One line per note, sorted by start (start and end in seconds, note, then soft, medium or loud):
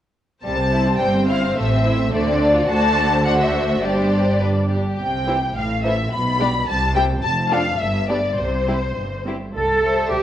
0.43 0.91 C2 soft
0.43 0.91 C3 soft
0.43 0.57 G3 soft
0.43 1.53 G3 soft
0.43 2.09 C4 soft
0.43 2.65 C5 soft
0.43 0.97 A5 medium
0.57 0.71 C4 soft
0.72 0.86 E4 soft
0.86 1.00 C4 soft
0.99 1.48 G1 soft
0.99 1.48 G2 soft
0.99 1.14 G3 soft
0.99 1.29 G5 soft
1.14 1.28 C4 soft
1.28 1.43 E4 soft
1.28 1.57 F5 soft
1.42 1.57 C4 soft
1.56 2.04 A1 medium
1.56 2.04 A2 soft
1.56 1.70 A3 soft
1.56 2.68 A3 soft
1.56 2.12 E5 medium
1.71 1.85 C4 soft
1.84 1.99 E4 soft
1.98 2.12 C4 soft
2.11 2.59 D2 soft
2.11 2.59 D3 soft
2.11 2.25 A3 soft
2.11 2.68 D4 soft
2.11 2.68 D5 medium
2.25 2.40 C4 soft
2.39 2.54 D4 soft
2.54 2.68 F4 soft
2.67 3.78 D2 medium
2.67 3.78 D3 soft
2.67 3.21 A3 soft
2.67 3.21 D4 medium
2.67 3.20 F#4 soft
2.67 3.20 C5 soft
2.67 3.24 A5 medium
3.24 3.81 A3 soft
3.24 3.80 D4 soft
3.24 3.80 F#4 soft
3.24 3.80 C5 soft
3.24 3.39 F#5 medium
3.39 3.81 E5 medium
3.82 4.75 G1 soft
3.82 4.76 G2 soft
3.82 4.38 G3 soft
3.82 4.39 D4 soft
3.82 4.40 G4 soft
3.82 4.38 C5 soft
3.82 4.69 D5 soft
4.40 4.77 G3 soft
4.40 4.77 D4 soft
4.40 4.48 B4 soft
4.69 4.98 G4 soft
4.98 5.46 C2 soft
4.98 5.47 C3 soft
4.98 5.52 G5 medium
5.27 5.36 E3 soft
5.27 5.35 E4 soft
5.27 5.36 G4 soft
5.27 5.35 C5 soft
5.56 6.03 A1 soft
5.56 6.03 A2 soft
5.56 5.85 F5 soft
5.84 5.93 E3 soft
5.84 5.93 E4 soft
5.84 5.92 A4 soft
5.84 5.92 C5 soft
5.84 6.11 E5 soft
6.13 6.58 B1 soft
6.13 6.58 B2 soft
6.13 6.66 B5 medium
6.39 6.47 G3 soft
6.39 6.48 D4 soft
6.39 6.48 G4 soft
6.39 6.48 D5 soft
6.67 7.13 C2 medium
6.67 7.14 C3 soft
6.67 6.95 A5 medium
6.95 7.03 G3 soft
6.95 7.03 E4 soft
6.95 7.04 G4 soft
6.95 7.03 C5 soft
6.95 7.03 G5 medium
7.23 7.70 F1 medium
7.23 7.70 F2 medium
7.23 7.50 A5 medium
7.51 7.59 F3 soft
7.51 7.59 D4 soft
7.51 7.60 D4 medium
7.51 7.59 A4 soft
7.51 7.80 F5 medium
7.80 8.28 G1 medium
7.80 8.28 G2 medium
7.80 8.09 E5 medium
8.09 8.17 G3 soft
8.09 8.17 B3 soft
8.09 8.17 D4 soft
8.09 8.17 G4 soft
8.09 8.37 D5 medium
8.38 8.86 C2 soft
8.38 8.87 C3 soft
8.38 9.26 C5 soft
8.67 8.75 G3 soft
8.67 8.75 C4 soft
8.67 8.76 E4 soft
8.67 8.76 G4 soft
8.96 9.45 G1 soft
8.96 9.45 G2 soft
9.25 9.33 G3 soft
9.25 9.33 C4 soft
9.25 9.35 E4 soft
9.25 9.35 G4 soft
9.54 10.02 C2 soft
9.54 10.07 A4 medium
9.83 10.23 G3 soft
9.83 10.23 C5 soft
9.83 10.23 E5 soft
10.12 10.23 C2 soft
10.12 10.23 G4 medium